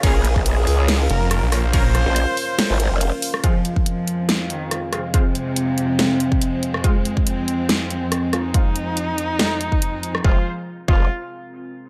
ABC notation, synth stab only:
X:1
M:4/4
L:1/16
Q:"Swing 16ths" 1/4=141
K:Fm
V:1 name="Synth stab"
[DFB] z12 z [DFB]2 | [DFB] z12 z3 | [A,CF] z12 z [A,CF]2 | [A,CF] z12 z3 |
[A,CF] z12 z [A,CF]2 | [A,CF] z12 z3 | [A,CF]2 z4 [A,CF]2 z8 |]